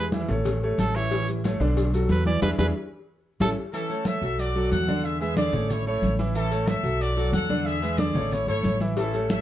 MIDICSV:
0, 0, Header, 1, 6, 480
1, 0, Start_track
1, 0, Key_signature, 3, "major"
1, 0, Tempo, 327154
1, 1639, Time_signature, 4, 2, 24, 8
1, 13809, End_track
2, 0, Start_track
2, 0, Title_t, "Trumpet"
2, 0, Program_c, 0, 56
2, 1164, Note_on_c, 0, 69, 88
2, 1396, Note_on_c, 0, 73, 98
2, 1418, Note_off_c, 0, 69, 0
2, 1878, Note_off_c, 0, 73, 0
2, 3093, Note_on_c, 0, 71, 87
2, 3310, Note_off_c, 0, 71, 0
2, 3320, Note_on_c, 0, 74, 92
2, 3543, Note_off_c, 0, 74, 0
2, 3557, Note_on_c, 0, 71, 94
2, 3673, Note_off_c, 0, 71, 0
2, 3796, Note_on_c, 0, 71, 99
2, 3912, Note_off_c, 0, 71, 0
2, 5003, Note_on_c, 0, 69, 103
2, 5118, Note_off_c, 0, 69, 0
2, 13809, End_track
3, 0, Start_track
3, 0, Title_t, "Trumpet section"
3, 0, Program_c, 1, 61
3, 5473, Note_on_c, 1, 69, 98
3, 5483, Note_on_c, 1, 61, 76
3, 5923, Note_off_c, 1, 69, 0
3, 5929, Note_off_c, 1, 61, 0
3, 5973, Note_on_c, 1, 76, 102
3, 5981, Note_on_c, 1, 69, 82
3, 6447, Note_off_c, 1, 76, 0
3, 6451, Note_off_c, 1, 69, 0
3, 6451, Note_on_c, 1, 74, 100
3, 6460, Note_on_c, 1, 66, 86
3, 6921, Note_on_c, 1, 78, 107
3, 6926, Note_off_c, 1, 74, 0
3, 6926, Note_on_c, 1, 69, 87
3, 6930, Note_off_c, 1, 66, 0
3, 7368, Note_off_c, 1, 78, 0
3, 7370, Note_off_c, 1, 69, 0
3, 7398, Note_on_c, 1, 76, 104
3, 7412, Note_on_c, 1, 68, 83
3, 7625, Note_off_c, 1, 76, 0
3, 7629, Note_off_c, 1, 68, 0
3, 7642, Note_on_c, 1, 76, 106
3, 7646, Note_on_c, 1, 68, 79
3, 7865, Note_off_c, 1, 76, 0
3, 7867, Note_off_c, 1, 68, 0
3, 7875, Note_on_c, 1, 74, 98
3, 7889, Note_on_c, 1, 68, 77
3, 8324, Note_off_c, 1, 74, 0
3, 8331, Note_off_c, 1, 68, 0
3, 8364, Note_on_c, 1, 73, 107
3, 8377, Note_on_c, 1, 64, 81
3, 8586, Note_off_c, 1, 73, 0
3, 8594, Note_off_c, 1, 64, 0
3, 8604, Note_on_c, 1, 73, 102
3, 8612, Note_on_c, 1, 64, 76
3, 9048, Note_off_c, 1, 73, 0
3, 9053, Note_off_c, 1, 64, 0
3, 9334, Note_on_c, 1, 69, 102
3, 9343, Note_on_c, 1, 61, 81
3, 9774, Note_off_c, 1, 69, 0
3, 9778, Note_off_c, 1, 61, 0
3, 9806, Note_on_c, 1, 76, 99
3, 9819, Note_on_c, 1, 69, 84
3, 10283, Note_off_c, 1, 76, 0
3, 10285, Note_on_c, 1, 74, 110
3, 10289, Note_off_c, 1, 69, 0
3, 10294, Note_on_c, 1, 66, 80
3, 10761, Note_on_c, 1, 78, 106
3, 10762, Note_off_c, 1, 74, 0
3, 10766, Note_off_c, 1, 66, 0
3, 10770, Note_on_c, 1, 69, 78
3, 11206, Note_off_c, 1, 78, 0
3, 11210, Note_off_c, 1, 69, 0
3, 11231, Note_on_c, 1, 68, 83
3, 11231, Note_on_c, 1, 76, 102
3, 11695, Note_off_c, 1, 68, 0
3, 11710, Note_on_c, 1, 74, 95
3, 11713, Note_on_c, 1, 68, 77
3, 11714, Note_off_c, 1, 76, 0
3, 12193, Note_off_c, 1, 74, 0
3, 12194, Note_off_c, 1, 68, 0
3, 12217, Note_on_c, 1, 73, 92
3, 12218, Note_on_c, 1, 64, 75
3, 12433, Note_off_c, 1, 64, 0
3, 12435, Note_off_c, 1, 73, 0
3, 12451, Note_on_c, 1, 64, 73
3, 12453, Note_on_c, 1, 73, 98
3, 12890, Note_off_c, 1, 64, 0
3, 12891, Note_off_c, 1, 73, 0
3, 13166, Note_on_c, 1, 69, 88
3, 13172, Note_on_c, 1, 61, 68
3, 13607, Note_off_c, 1, 69, 0
3, 13610, Note_off_c, 1, 61, 0
3, 13653, Note_on_c, 1, 69, 70
3, 13653, Note_on_c, 1, 76, 93
3, 13809, Note_off_c, 1, 69, 0
3, 13809, Note_off_c, 1, 76, 0
3, 13809, End_track
4, 0, Start_track
4, 0, Title_t, "Grand piano"
4, 0, Program_c, 2, 0
4, 0, Note_on_c, 2, 56, 69
4, 0, Note_on_c, 2, 68, 74
4, 0, Note_on_c, 2, 71, 72
4, 152, Note_off_c, 2, 56, 0
4, 154, Note_off_c, 2, 68, 0
4, 158, Note_off_c, 2, 71, 0
4, 194, Note_on_c, 2, 52, 85
4, 197, Note_on_c, 2, 64, 82
4, 203, Note_on_c, 2, 76, 79
4, 392, Note_off_c, 2, 52, 0
4, 394, Note_off_c, 2, 64, 0
4, 397, Note_off_c, 2, 76, 0
4, 441, Note_on_c, 2, 57, 72
4, 444, Note_on_c, 2, 69, 73
4, 450, Note_on_c, 2, 73, 73
4, 834, Note_off_c, 2, 57, 0
4, 835, Note_off_c, 2, 69, 0
4, 839, Note_off_c, 2, 73, 0
4, 929, Note_on_c, 2, 69, 81
4, 930, Note_on_c, 2, 57, 82
4, 936, Note_on_c, 2, 73, 84
4, 1318, Note_off_c, 2, 69, 0
4, 1319, Note_off_c, 2, 57, 0
4, 1323, Note_off_c, 2, 73, 0
4, 1405, Note_on_c, 2, 52, 90
4, 1406, Note_on_c, 2, 64, 94
4, 1417, Note_on_c, 2, 76, 83
4, 1599, Note_off_c, 2, 52, 0
4, 1600, Note_off_c, 2, 64, 0
4, 1606, Note_off_c, 2, 76, 0
4, 1643, Note_on_c, 2, 52, 80
4, 1652, Note_on_c, 2, 64, 84
4, 1653, Note_on_c, 2, 76, 81
4, 2035, Note_off_c, 2, 52, 0
4, 2041, Note_off_c, 2, 64, 0
4, 2041, Note_off_c, 2, 76, 0
4, 2117, Note_on_c, 2, 69, 74
4, 2120, Note_on_c, 2, 57, 78
4, 2126, Note_on_c, 2, 73, 77
4, 2315, Note_off_c, 2, 69, 0
4, 2316, Note_off_c, 2, 57, 0
4, 2320, Note_off_c, 2, 73, 0
4, 2353, Note_on_c, 2, 50, 84
4, 2356, Note_on_c, 2, 62, 85
4, 2365, Note_on_c, 2, 74, 88
4, 2749, Note_off_c, 2, 50, 0
4, 2752, Note_off_c, 2, 62, 0
4, 2757, Note_off_c, 2, 74, 0
4, 2838, Note_on_c, 2, 54, 87
4, 2847, Note_on_c, 2, 66, 81
4, 2847, Note_on_c, 2, 69, 86
4, 3233, Note_off_c, 2, 54, 0
4, 3238, Note_off_c, 2, 66, 0
4, 3238, Note_off_c, 2, 69, 0
4, 3317, Note_on_c, 2, 52, 88
4, 3324, Note_on_c, 2, 64, 87
4, 3329, Note_on_c, 2, 76, 84
4, 3515, Note_off_c, 2, 52, 0
4, 3519, Note_off_c, 2, 64, 0
4, 3522, Note_off_c, 2, 76, 0
4, 3549, Note_on_c, 2, 62, 105
4, 3552, Note_on_c, 2, 68, 95
4, 3553, Note_on_c, 2, 64, 102
4, 3707, Note_off_c, 2, 62, 0
4, 3709, Note_off_c, 2, 68, 0
4, 3710, Note_off_c, 2, 64, 0
4, 3791, Note_on_c, 2, 68, 102
4, 3793, Note_on_c, 2, 62, 98
4, 3794, Note_on_c, 2, 64, 96
4, 3948, Note_off_c, 2, 68, 0
4, 3949, Note_off_c, 2, 62, 0
4, 3950, Note_off_c, 2, 64, 0
4, 4994, Note_on_c, 2, 69, 97
4, 4995, Note_on_c, 2, 64, 97
4, 4998, Note_on_c, 2, 61, 95
4, 5151, Note_off_c, 2, 64, 0
4, 5151, Note_off_c, 2, 69, 0
4, 5153, Note_off_c, 2, 61, 0
4, 5479, Note_on_c, 2, 52, 82
4, 5485, Note_on_c, 2, 64, 85
4, 5489, Note_on_c, 2, 76, 84
4, 5677, Note_off_c, 2, 52, 0
4, 5680, Note_off_c, 2, 64, 0
4, 5683, Note_off_c, 2, 76, 0
4, 5714, Note_on_c, 2, 57, 74
4, 5721, Note_on_c, 2, 69, 72
4, 5727, Note_on_c, 2, 73, 73
4, 6111, Note_off_c, 2, 57, 0
4, 6115, Note_off_c, 2, 69, 0
4, 6118, Note_off_c, 2, 73, 0
4, 6197, Note_on_c, 2, 54, 73
4, 6203, Note_on_c, 2, 69, 67
4, 6204, Note_on_c, 2, 66, 74
4, 6592, Note_off_c, 2, 54, 0
4, 6596, Note_off_c, 2, 66, 0
4, 6596, Note_off_c, 2, 69, 0
4, 6678, Note_on_c, 2, 54, 85
4, 6684, Note_on_c, 2, 66, 78
4, 6689, Note_on_c, 2, 69, 82
4, 7073, Note_off_c, 2, 54, 0
4, 7076, Note_off_c, 2, 66, 0
4, 7079, Note_off_c, 2, 69, 0
4, 7165, Note_on_c, 2, 50, 88
4, 7165, Note_on_c, 2, 62, 86
4, 7170, Note_on_c, 2, 74, 85
4, 7557, Note_off_c, 2, 50, 0
4, 7557, Note_off_c, 2, 62, 0
4, 7560, Note_off_c, 2, 74, 0
4, 7636, Note_on_c, 2, 56, 74
4, 7647, Note_on_c, 2, 68, 75
4, 7648, Note_on_c, 2, 71, 77
4, 7835, Note_off_c, 2, 56, 0
4, 7841, Note_off_c, 2, 68, 0
4, 7842, Note_off_c, 2, 71, 0
4, 7879, Note_on_c, 2, 50, 90
4, 7887, Note_on_c, 2, 62, 86
4, 7896, Note_on_c, 2, 74, 82
4, 8077, Note_off_c, 2, 50, 0
4, 8081, Note_off_c, 2, 62, 0
4, 8086, Note_off_c, 2, 74, 0
4, 8117, Note_on_c, 2, 57, 73
4, 8119, Note_on_c, 2, 69, 69
4, 8129, Note_on_c, 2, 73, 75
4, 8512, Note_off_c, 2, 57, 0
4, 8513, Note_off_c, 2, 69, 0
4, 8519, Note_off_c, 2, 73, 0
4, 8607, Note_on_c, 2, 57, 86
4, 8613, Note_on_c, 2, 69, 84
4, 8613, Note_on_c, 2, 73, 85
4, 8997, Note_off_c, 2, 57, 0
4, 9001, Note_off_c, 2, 69, 0
4, 9001, Note_off_c, 2, 73, 0
4, 9081, Note_on_c, 2, 52, 91
4, 9082, Note_on_c, 2, 64, 94
4, 9090, Note_on_c, 2, 76, 93
4, 9277, Note_off_c, 2, 52, 0
4, 9278, Note_off_c, 2, 64, 0
4, 9283, Note_off_c, 2, 76, 0
4, 9314, Note_on_c, 2, 52, 85
4, 9319, Note_on_c, 2, 64, 79
4, 9325, Note_on_c, 2, 76, 83
4, 9513, Note_off_c, 2, 52, 0
4, 9516, Note_off_c, 2, 64, 0
4, 9520, Note_off_c, 2, 76, 0
4, 9555, Note_on_c, 2, 57, 79
4, 9556, Note_on_c, 2, 73, 84
4, 9557, Note_on_c, 2, 69, 72
4, 9950, Note_off_c, 2, 57, 0
4, 9951, Note_off_c, 2, 69, 0
4, 9951, Note_off_c, 2, 73, 0
4, 10032, Note_on_c, 2, 54, 77
4, 10035, Note_on_c, 2, 66, 80
4, 10042, Note_on_c, 2, 69, 81
4, 10428, Note_off_c, 2, 54, 0
4, 10430, Note_off_c, 2, 66, 0
4, 10434, Note_off_c, 2, 69, 0
4, 10512, Note_on_c, 2, 54, 87
4, 10521, Note_on_c, 2, 66, 86
4, 10524, Note_on_c, 2, 69, 89
4, 10908, Note_off_c, 2, 54, 0
4, 10913, Note_off_c, 2, 66, 0
4, 10915, Note_off_c, 2, 69, 0
4, 11000, Note_on_c, 2, 50, 92
4, 11004, Note_on_c, 2, 62, 84
4, 11006, Note_on_c, 2, 74, 90
4, 11392, Note_off_c, 2, 50, 0
4, 11395, Note_off_c, 2, 62, 0
4, 11396, Note_off_c, 2, 74, 0
4, 11474, Note_on_c, 2, 56, 74
4, 11480, Note_on_c, 2, 68, 71
4, 11485, Note_on_c, 2, 71, 79
4, 11672, Note_off_c, 2, 56, 0
4, 11676, Note_off_c, 2, 68, 0
4, 11679, Note_off_c, 2, 71, 0
4, 11711, Note_on_c, 2, 62, 84
4, 11712, Note_on_c, 2, 50, 84
4, 11724, Note_on_c, 2, 74, 86
4, 11910, Note_off_c, 2, 62, 0
4, 11911, Note_off_c, 2, 50, 0
4, 11918, Note_off_c, 2, 74, 0
4, 11952, Note_on_c, 2, 57, 74
4, 11959, Note_on_c, 2, 69, 75
4, 11962, Note_on_c, 2, 73, 79
4, 12347, Note_off_c, 2, 57, 0
4, 12352, Note_off_c, 2, 69, 0
4, 12353, Note_off_c, 2, 73, 0
4, 12438, Note_on_c, 2, 57, 85
4, 12446, Note_on_c, 2, 69, 84
4, 12446, Note_on_c, 2, 73, 88
4, 12831, Note_off_c, 2, 57, 0
4, 12835, Note_off_c, 2, 69, 0
4, 12835, Note_off_c, 2, 73, 0
4, 12920, Note_on_c, 2, 52, 83
4, 12924, Note_on_c, 2, 64, 85
4, 12931, Note_on_c, 2, 76, 87
4, 13115, Note_off_c, 2, 52, 0
4, 13117, Note_off_c, 2, 64, 0
4, 13121, Note_off_c, 2, 76, 0
4, 13164, Note_on_c, 2, 52, 81
4, 13166, Note_on_c, 2, 64, 78
4, 13172, Note_on_c, 2, 76, 80
4, 13357, Note_off_c, 2, 52, 0
4, 13358, Note_off_c, 2, 64, 0
4, 13362, Note_off_c, 2, 76, 0
4, 13408, Note_on_c, 2, 57, 79
4, 13410, Note_on_c, 2, 69, 77
4, 13415, Note_on_c, 2, 73, 71
4, 13796, Note_off_c, 2, 57, 0
4, 13797, Note_off_c, 2, 69, 0
4, 13800, Note_off_c, 2, 73, 0
4, 13809, End_track
5, 0, Start_track
5, 0, Title_t, "Upright bass"
5, 0, Program_c, 3, 32
5, 0, Note_on_c, 3, 40, 92
5, 349, Note_off_c, 3, 40, 0
5, 424, Note_on_c, 3, 33, 100
5, 1101, Note_off_c, 3, 33, 0
5, 1148, Note_on_c, 3, 33, 94
5, 2272, Note_off_c, 3, 33, 0
5, 2344, Note_on_c, 3, 35, 99
5, 3021, Note_off_c, 3, 35, 0
5, 3070, Note_on_c, 3, 40, 93
5, 3521, Note_off_c, 3, 40, 0
5, 3551, Note_on_c, 3, 40, 91
5, 3734, Note_off_c, 3, 40, 0
5, 3791, Note_on_c, 3, 40, 100
5, 3974, Note_off_c, 3, 40, 0
5, 4988, Note_on_c, 3, 33, 98
5, 5173, Note_off_c, 3, 33, 0
5, 6185, Note_on_c, 3, 35, 94
5, 6862, Note_off_c, 3, 35, 0
5, 6916, Note_on_c, 3, 40, 97
5, 8035, Note_off_c, 3, 40, 0
5, 8107, Note_on_c, 3, 33, 103
5, 8783, Note_off_c, 3, 33, 0
5, 8830, Note_on_c, 3, 33, 93
5, 9952, Note_off_c, 3, 33, 0
5, 10029, Note_on_c, 3, 35, 97
5, 10703, Note_off_c, 3, 35, 0
5, 10745, Note_on_c, 3, 40, 100
5, 11868, Note_off_c, 3, 40, 0
5, 11946, Note_on_c, 3, 33, 95
5, 12397, Note_off_c, 3, 33, 0
5, 12426, Note_on_c, 3, 32, 73
5, 12654, Note_off_c, 3, 32, 0
5, 12667, Note_on_c, 3, 33, 91
5, 13787, Note_off_c, 3, 33, 0
5, 13809, End_track
6, 0, Start_track
6, 0, Title_t, "Drums"
6, 177, Note_on_c, 9, 63, 93
6, 191, Note_on_c, 9, 56, 68
6, 192, Note_on_c, 9, 70, 72
6, 324, Note_off_c, 9, 63, 0
6, 338, Note_off_c, 9, 56, 0
6, 339, Note_off_c, 9, 70, 0
6, 418, Note_on_c, 9, 63, 34
6, 418, Note_on_c, 9, 64, 90
6, 435, Note_on_c, 9, 70, 30
6, 564, Note_off_c, 9, 63, 0
6, 564, Note_off_c, 9, 64, 0
6, 581, Note_off_c, 9, 70, 0
6, 665, Note_on_c, 9, 63, 36
6, 665, Note_on_c, 9, 64, 72
6, 668, Note_on_c, 9, 56, 113
6, 668, Note_on_c, 9, 70, 79
6, 812, Note_off_c, 9, 63, 0
6, 812, Note_off_c, 9, 64, 0
6, 815, Note_off_c, 9, 56, 0
6, 815, Note_off_c, 9, 70, 0
6, 900, Note_on_c, 9, 63, 37
6, 1047, Note_off_c, 9, 63, 0
6, 1154, Note_on_c, 9, 56, 73
6, 1154, Note_on_c, 9, 70, 77
6, 1159, Note_on_c, 9, 63, 88
6, 1300, Note_off_c, 9, 70, 0
6, 1301, Note_off_c, 9, 56, 0
6, 1305, Note_off_c, 9, 63, 0
6, 1392, Note_on_c, 9, 56, 70
6, 1402, Note_on_c, 9, 70, 31
6, 1539, Note_off_c, 9, 56, 0
6, 1549, Note_off_c, 9, 70, 0
6, 1631, Note_on_c, 9, 56, 109
6, 1635, Note_on_c, 9, 63, 34
6, 1638, Note_on_c, 9, 70, 75
6, 1778, Note_off_c, 9, 56, 0
6, 1782, Note_off_c, 9, 63, 0
6, 1784, Note_off_c, 9, 70, 0
6, 1882, Note_on_c, 9, 70, 63
6, 1887, Note_on_c, 9, 63, 36
6, 2029, Note_off_c, 9, 70, 0
6, 2034, Note_off_c, 9, 63, 0
6, 2115, Note_on_c, 9, 56, 68
6, 2125, Note_on_c, 9, 70, 72
6, 2131, Note_on_c, 9, 63, 92
6, 2262, Note_off_c, 9, 56, 0
6, 2272, Note_off_c, 9, 70, 0
6, 2277, Note_off_c, 9, 63, 0
6, 2357, Note_on_c, 9, 56, 71
6, 2365, Note_on_c, 9, 70, 30
6, 2368, Note_on_c, 9, 63, 35
6, 2504, Note_off_c, 9, 56, 0
6, 2511, Note_off_c, 9, 70, 0
6, 2515, Note_off_c, 9, 63, 0
6, 2595, Note_on_c, 9, 56, 113
6, 2602, Note_on_c, 9, 70, 73
6, 2605, Note_on_c, 9, 63, 34
6, 2742, Note_off_c, 9, 56, 0
6, 2748, Note_off_c, 9, 70, 0
6, 2751, Note_off_c, 9, 63, 0
6, 2837, Note_on_c, 9, 63, 39
6, 2844, Note_on_c, 9, 70, 58
6, 2984, Note_off_c, 9, 63, 0
6, 2990, Note_off_c, 9, 70, 0
6, 3066, Note_on_c, 9, 63, 86
6, 3069, Note_on_c, 9, 56, 72
6, 3082, Note_on_c, 9, 70, 72
6, 3213, Note_off_c, 9, 63, 0
6, 3216, Note_off_c, 9, 56, 0
6, 3229, Note_off_c, 9, 70, 0
6, 3308, Note_on_c, 9, 63, 84
6, 3320, Note_on_c, 9, 70, 30
6, 3455, Note_off_c, 9, 63, 0
6, 3467, Note_off_c, 9, 70, 0
6, 3550, Note_on_c, 9, 56, 103
6, 3551, Note_on_c, 9, 70, 100
6, 3553, Note_on_c, 9, 63, 101
6, 3697, Note_off_c, 9, 56, 0
6, 3698, Note_off_c, 9, 70, 0
6, 3700, Note_off_c, 9, 63, 0
6, 3791, Note_on_c, 9, 56, 101
6, 3793, Note_on_c, 9, 70, 97
6, 3796, Note_on_c, 9, 63, 102
6, 3938, Note_off_c, 9, 56, 0
6, 3940, Note_off_c, 9, 70, 0
6, 3942, Note_off_c, 9, 63, 0
6, 4997, Note_on_c, 9, 63, 107
6, 4997, Note_on_c, 9, 70, 103
6, 5003, Note_on_c, 9, 56, 102
6, 5144, Note_off_c, 9, 63, 0
6, 5144, Note_off_c, 9, 70, 0
6, 5149, Note_off_c, 9, 56, 0
6, 5477, Note_on_c, 9, 63, 36
6, 5479, Note_on_c, 9, 70, 73
6, 5624, Note_off_c, 9, 63, 0
6, 5626, Note_off_c, 9, 70, 0
6, 5719, Note_on_c, 9, 63, 35
6, 5723, Note_on_c, 9, 70, 62
6, 5866, Note_off_c, 9, 63, 0
6, 5869, Note_off_c, 9, 70, 0
6, 5944, Note_on_c, 9, 63, 90
6, 5958, Note_on_c, 9, 70, 72
6, 6091, Note_off_c, 9, 63, 0
6, 6105, Note_off_c, 9, 70, 0
6, 6186, Note_on_c, 9, 63, 37
6, 6199, Note_on_c, 9, 70, 30
6, 6333, Note_off_c, 9, 63, 0
6, 6346, Note_off_c, 9, 70, 0
6, 6438, Note_on_c, 9, 63, 35
6, 6442, Note_on_c, 9, 70, 73
6, 6585, Note_off_c, 9, 63, 0
6, 6589, Note_off_c, 9, 70, 0
6, 6677, Note_on_c, 9, 63, 37
6, 6824, Note_off_c, 9, 63, 0
6, 6919, Note_on_c, 9, 63, 87
6, 6921, Note_on_c, 9, 70, 73
6, 7066, Note_off_c, 9, 63, 0
6, 7068, Note_off_c, 9, 70, 0
6, 7160, Note_on_c, 9, 63, 75
6, 7164, Note_on_c, 9, 70, 30
6, 7307, Note_off_c, 9, 63, 0
6, 7311, Note_off_c, 9, 70, 0
6, 7395, Note_on_c, 9, 63, 34
6, 7404, Note_on_c, 9, 70, 75
6, 7542, Note_off_c, 9, 63, 0
6, 7551, Note_off_c, 9, 70, 0
6, 7644, Note_on_c, 9, 63, 35
6, 7649, Note_on_c, 9, 70, 60
6, 7791, Note_off_c, 9, 63, 0
6, 7796, Note_off_c, 9, 70, 0
6, 7875, Note_on_c, 9, 63, 94
6, 7887, Note_on_c, 9, 70, 76
6, 8022, Note_off_c, 9, 63, 0
6, 8034, Note_off_c, 9, 70, 0
6, 8119, Note_on_c, 9, 63, 33
6, 8119, Note_on_c, 9, 64, 91
6, 8125, Note_on_c, 9, 70, 31
6, 8265, Note_off_c, 9, 63, 0
6, 8265, Note_off_c, 9, 64, 0
6, 8272, Note_off_c, 9, 70, 0
6, 8360, Note_on_c, 9, 70, 78
6, 8370, Note_on_c, 9, 63, 36
6, 8370, Note_on_c, 9, 64, 78
6, 8507, Note_off_c, 9, 70, 0
6, 8517, Note_off_c, 9, 63, 0
6, 8517, Note_off_c, 9, 64, 0
6, 8606, Note_on_c, 9, 63, 37
6, 8753, Note_off_c, 9, 63, 0
6, 8839, Note_on_c, 9, 70, 74
6, 8846, Note_on_c, 9, 63, 85
6, 8986, Note_off_c, 9, 70, 0
6, 8993, Note_off_c, 9, 63, 0
6, 9078, Note_on_c, 9, 70, 30
6, 9083, Note_on_c, 9, 63, 72
6, 9225, Note_off_c, 9, 70, 0
6, 9230, Note_off_c, 9, 63, 0
6, 9320, Note_on_c, 9, 70, 75
6, 9326, Note_on_c, 9, 63, 32
6, 9467, Note_off_c, 9, 70, 0
6, 9472, Note_off_c, 9, 63, 0
6, 9561, Note_on_c, 9, 63, 37
6, 9561, Note_on_c, 9, 70, 64
6, 9708, Note_off_c, 9, 63, 0
6, 9708, Note_off_c, 9, 70, 0
6, 9796, Note_on_c, 9, 63, 102
6, 9810, Note_on_c, 9, 70, 75
6, 9943, Note_off_c, 9, 63, 0
6, 9956, Note_off_c, 9, 70, 0
6, 10041, Note_on_c, 9, 63, 37
6, 10050, Note_on_c, 9, 70, 30
6, 10188, Note_off_c, 9, 63, 0
6, 10197, Note_off_c, 9, 70, 0
6, 10284, Note_on_c, 9, 63, 37
6, 10285, Note_on_c, 9, 70, 75
6, 10431, Note_off_c, 9, 63, 0
6, 10432, Note_off_c, 9, 70, 0
6, 10523, Note_on_c, 9, 63, 38
6, 10525, Note_on_c, 9, 70, 63
6, 10670, Note_off_c, 9, 63, 0
6, 10671, Note_off_c, 9, 70, 0
6, 10758, Note_on_c, 9, 63, 91
6, 10758, Note_on_c, 9, 70, 78
6, 10905, Note_off_c, 9, 63, 0
6, 10905, Note_off_c, 9, 70, 0
6, 10993, Note_on_c, 9, 63, 86
6, 11004, Note_on_c, 9, 70, 31
6, 11139, Note_off_c, 9, 63, 0
6, 11151, Note_off_c, 9, 70, 0
6, 11233, Note_on_c, 9, 63, 35
6, 11248, Note_on_c, 9, 70, 71
6, 11379, Note_off_c, 9, 63, 0
6, 11394, Note_off_c, 9, 70, 0
6, 11475, Note_on_c, 9, 63, 37
6, 11481, Note_on_c, 9, 70, 62
6, 11622, Note_off_c, 9, 63, 0
6, 11628, Note_off_c, 9, 70, 0
6, 11711, Note_on_c, 9, 63, 90
6, 11722, Note_on_c, 9, 70, 69
6, 11858, Note_off_c, 9, 63, 0
6, 11869, Note_off_c, 9, 70, 0
6, 11962, Note_on_c, 9, 63, 36
6, 11962, Note_on_c, 9, 64, 89
6, 11968, Note_on_c, 9, 70, 31
6, 12109, Note_off_c, 9, 63, 0
6, 12109, Note_off_c, 9, 64, 0
6, 12115, Note_off_c, 9, 70, 0
6, 12204, Note_on_c, 9, 70, 69
6, 12212, Note_on_c, 9, 63, 37
6, 12212, Note_on_c, 9, 64, 71
6, 12351, Note_off_c, 9, 70, 0
6, 12358, Note_off_c, 9, 63, 0
6, 12358, Note_off_c, 9, 64, 0
6, 12449, Note_on_c, 9, 70, 62
6, 12457, Note_on_c, 9, 63, 39
6, 12596, Note_off_c, 9, 70, 0
6, 12604, Note_off_c, 9, 63, 0
6, 12683, Note_on_c, 9, 63, 83
6, 12684, Note_on_c, 9, 70, 78
6, 12830, Note_off_c, 9, 63, 0
6, 12831, Note_off_c, 9, 70, 0
6, 12919, Note_on_c, 9, 63, 67
6, 12925, Note_on_c, 9, 70, 31
6, 13066, Note_off_c, 9, 63, 0
6, 13072, Note_off_c, 9, 70, 0
6, 13158, Note_on_c, 9, 56, 118
6, 13159, Note_on_c, 9, 63, 34
6, 13163, Note_on_c, 9, 70, 68
6, 13305, Note_off_c, 9, 56, 0
6, 13306, Note_off_c, 9, 63, 0
6, 13310, Note_off_c, 9, 70, 0
6, 13403, Note_on_c, 9, 70, 63
6, 13407, Note_on_c, 9, 63, 36
6, 13550, Note_off_c, 9, 70, 0
6, 13554, Note_off_c, 9, 63, 0
6, 13641, Note_on_c, 9, 70, 73
6, 13646, Note_on_c, 9, 63, 95
6, 13647, Note_on_c, 9, 56, 71
6, 13788, Note_off_c, 9, 70, 0
6, 13793, Note_off_c, 9, 63, 0
6, 13794, Note_off_c, 9, 56, 0
6, 13809, End_track
0, 0, End_of_file